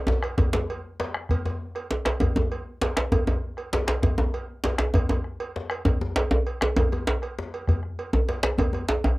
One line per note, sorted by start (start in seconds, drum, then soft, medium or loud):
0.07 djembe slap medium
0.07 djembe tone medium
0.23 bombo rim medium
0.23 cowbell soft
0.38 bombo rim soft
0.38 bombo low medium
0.38 cowbell soft
0.38 djembe slap soft
0.38 djembe tone medium
0.38 djembe bass medium
0.53 bombo rim soft
0.53 djembe slap medium
0.55 djembe slap medium
0.55 djembe tone medium
0.70 cowbell soft
0.70 djembe slap soft
1.00 cowbell medium
1.00 djembe slap medium
1.14 bombo rim medium
1.14 djembe slap soft
1.29 bombo rim soft
1.29 bombo low medium
1.29 cowbell medium
1.29 djembe bass medium
1.45 cowbell soft
1.45 djembe slap medium
1.45 djembe tone medium
1.75 bombo rim soft
1.75 cowbell soft
1.91 djembe slap medium
2.05 bombo rim medium
2.05 cowbell soft
2.05 djembe slap medium
2.20 bombo rim soft
2.20 bombo low medium
2.20 cowbell medium
2.20 djembe slap soft
2.20 djembe tone medium
2.20 djembe bass medium
2.36 bombo rim soft
2.36 djembe slap medium
2.36 djembe tone medium
2.51 cowbell soft
2.51 djembe slap soft
2.81 cowbell medium
2.81 djembe slap medium
2.97 bombo rim medium
2.97 djembe slap medium
3.12 bombo rim soft
3.12 bombo low medium
3.12 cowbell medium
3.12 djembe tone medium
3.12 djembe bass medium
3.27 cowbell soft
3.27 djembe slap soft
3.27 djembe tone medium
3.27 djembe tone soft
3.57 bombo rim soft
3.57 cowbell soft
3.73 djembe slap medium
3.87 bombo rim medium
3.87 cowbell medium
3.87 djembe slap medium
3.87 djembe slap soft
4.02 bombo rim soft
4.02 bombo low medium
4.02 cowbell medium
4.02 djembe slap soft
4.02 djembe tone medium
4.02 djembe bass medium
4.18 djembe slap medium
4.18 djembe tone medium
4.34 cowbell medium
4.34 djembe slap soft
4.64 cowbell medium
4.64 djembe slap medium
4.78 bombo rim medium
4.78 djembe slap medium
4.78 djembe slap soft
4.94 bombo low medium
4.94 cowbell medium
4.94 djembe tone medium
4.94 djembe bass medium
5.09 bombo rim soft
5.09 cowbell soft
5.09 djembe slap soft
5.09 djembe tone medium
5.09 djembe tone soft
5.24 bombo rim soft
5.40 cowbell medium
5.56 djembe slap medium
5.70 bombo rim medium
5.70 cowbell medium
5.85 bombo low medium
5.85 cowbell soft
5.85 djembe tone medium
5.85 djembe bass medium
6.01 djembe slap medium
6.01 djembe tone medium
6.16 bombo rim soft
6.16 cowbell medium
6.16 djembe slap medium
6.16 djembe slap soft
6.31 djembe tone medium
6.47 cowbell soft
6.61 bombo rim medium
6.61 djembe slap medium
6.76 bombo rim soft
6.76 bombo low medium
6.76 cowbell medium
6.76 djembe tone loud
6.76 djembe bass medium
6.92 cowbell soft
6.92 djembe slap medium
6.92 djembe tone medium
7.07 djembe slap medium
7.22 bombo rim soft
7.22 cowbell soft
7.39 djembe slap medium
7.54 cowbell soft
7.54 djembe slap soft
7.67 bombo rim soft
7.67 bombo low medium
7.67 cowbell soft
7.67 djembe slap soft
7.67 djembe bass medium
7.83 bombo rim soft
7.99 cowbell soft
7.99 djembe slap soft
8.13 djembe tone medium
8.29 cowbell medium
8.29 djembe slap medium
8.43 bombo rim medium
8.43 djembe slap medium
8.43 djembe slap soft
8.58 bombo rim soft
8.58 bombo low medium
8.58 cowbell medium
8.58 djembe tone medium
8.58 djembe bass medium
8.73 cowbell soft
8.73 djembe slap soft
8.73 djembe tone medium
8.88 djembe slap medium
9.04 bombo rim soft
9.04 cowbell soft
9.04 djembe tone medium